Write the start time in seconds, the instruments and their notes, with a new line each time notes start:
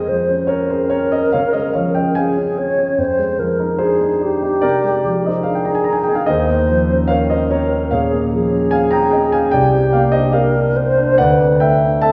Already playing: grand piano F2 G#3 C5 D#5
0.08 grand piano F3, alto flute C5
0.29 grand piano C#4
0.47 grand piano C4 A#4 C#5, alto flute A#4
0.70 grand piano C#4 G#4 C5
0.90 grand piano C4 A#4 C#5
1.12 grand piano C#4 C5 D#5
1.32 grand piano C#3 C#5 F5
1.53 grand piano G#3 C5 D#5
1.73 grand piano F3 C#5 F5
1.95 grand piano C#4 D#5 G5
2.15 grand piano C4 F5 G#5, alto flute G#4
2.38 grand piano C#4
2.58 grand piano C4, alto flute C#5
2.78 grand piano C#4
2.98 grand piano F2, alto flute C5
3.19 grand piano G#3
3.39 grand piano F3, alto flute A#4
3.59 grand piano D#4
3.78 grand piano D4 G#4 C5, alto flute G#4
4.01 grand piano D#4
4.21 grand piano D4, alto flute G4
4.43 grand piano D#4
4.61 grand piano C3 A#4 D5
4.83 grand piano G#3
5.04 grand piano F3
5.24 grand piano D#4 C5 D#5
5.43 grand piano D4 D5 F5, alto flute G#4
5.55 grand piano G5
5.65 grand piano D#4 A#5
5.75 grand piano G#5
5.84 grand piano D4 A#5
5.93 grand piano G#5
6.04 grand piano G5
6.08 grand piano D#4
6.15 grand piano F5
6.26 grand piano D#2 A#4 D#5, alto flute C5
6.50 grand piano A#3
6.69 grand piano F3
6.89 grand piano C#4
7.08 grand piano C4 C#5 F5, alto flute A#4
7.30 grand piano C#4 C5 D#5
7.50 grand piano C4 A#4 C#5
7.72 grand piano C#4
7.91 grand piano A#2 C#5 F5, alto flute G#4
8.13 grand piano A#3
8.33 grand piano F3, alto flute G#4
8.52 grand piano C#4
8.71 grand piano C4 F5 G#5
8.91 grand piano C#4 G5 A#5
9.11 grand piano C4 D#5 G5
9.32 grand piano C#4 F5 G#5
9.51 grand piano C2 D5 G5, alto flute G4
9.74 grand piano C4
9.93 grand piano A#3 D5 F5
10.12 grand piano D4 C5 D#5
10.33 grand piano C4 D5 F5, alto flute A#4
10.55 grand piano D4
10.76 grand piano C4, alto flute C5
10.98 grand piano D4
11.18 grand piano D2 D5 F#5, alto flute B4
11.42 grand piano C4
11.60 grand piano A3 E5 G5
11.83 grand piano D4
12.02 grand piano C4 E5 A5, alto flute A4